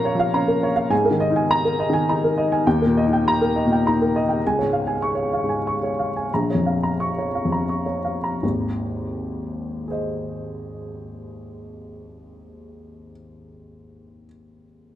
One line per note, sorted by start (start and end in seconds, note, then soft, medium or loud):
0.00 0.89 A#2 medium
0.00 0.15 F3 medium
0.00 0.34 C#4 medium
0.00 0.48 A#4 medium
0.00 0.05 C#5 medium
0.00 0.19 F5 medium
0.00 0.34 A#5 medium
0.05 0.28 C#5 medium
0.15 0.45 F3 medium
0.19 0.42 F5 medium
0.34 0.65 C#4 medium
0.34 0.57 A#5 medium
0.48 0.71 A#4 medium
0.63 0.86 C#5 medium
0.76 0.91 F5 medium
0.90 2.61 G#2 medium
0.90 1.15 G#5 medium
1.05 1.29 A#4 medium
1.11 1.42 D#3 medium
1.20 1.44 D#5 medium
1.30 1.61 D#4 medium
1.36 1.59 G#5 medium
1.51 1.74 A#5 medium
1.65 1.88 A#4 medium
1.80 2.02 D#5 medium
1.90 2.20 D#3 medium
1.90 2.17 G#5 medium
2.09 2.39 D#4 medium
2.09 2.32 A#5 medium
2.24 2.46 A#4 medium
2.38 2.60 D#5 medium
2.52 2.66 G#5 medium
2.67 4.38 D#2 medium
2.67 2.89 G5 medium
2.82 3.04 A#4 medium
2.86 3.16 A#2 medium
2.97 3.19 D#5 medium
3.06 3.37 D#4 medium
3.13 3.34 G5 medium
3.28 3.49 A#5 medium
3.42 3.63 A#4 medium
3.56 3.78 D#5 medium
3.67 3.96 A#2 soft
3.72 3.93 G5 medium
3.87 4.16 D#4 medium
3.87 4.08 A#5 medium
4.02 4.23 A#4 medium
4.16 4.37 D#5 medium
4.29 4.42 G5 medium
4.47 6.28 C#2 medium
4.47 4.68 G#5 medium
4.59 4.94 G#2 soft
4.59 4.81 C#5 soft
4.73 4.96 F5 medium
4.87 5.11 G#5 medium
5.02 5.26 C#6 medium
5.15 5.41 C#5 medium
5.33 5.58 F5 soft
5.44 5.77 G#2 soft
5.49 5.74 G#5 soft
5.67 5.91 C#6 medium
5.83 6.07 C#5 soft
5.99 6.24 F5 soft
6.16 6.31 G#5 soft
6.34 8.40 A#1 medium
6.34 6.59 A#5 soft
6.50 6.76 C#5 soft
6.55 6.90 F2 soft
6.66 6.93 F5 soft
6.83 7.10 A#5 soft
7.00 7.27 C#6 medium
7.18 7.45 C#5 soft
7.35 7.63 F5 soft
7.45 7.83 F2 soft
7.52 7.80 A#5 soft
7.69 7.98 C#6 soft
7.86 8.16 C#5 soft
8.05 8.34 F5 soft
8.24 8.42 A#5 soft
8.43 13.10 G#1 soft
8.43 13.10 D#2 soft
9.88 14.24 G#4 soft
9.88 14.26 C5 soft
9.88 14.26 D#5 soft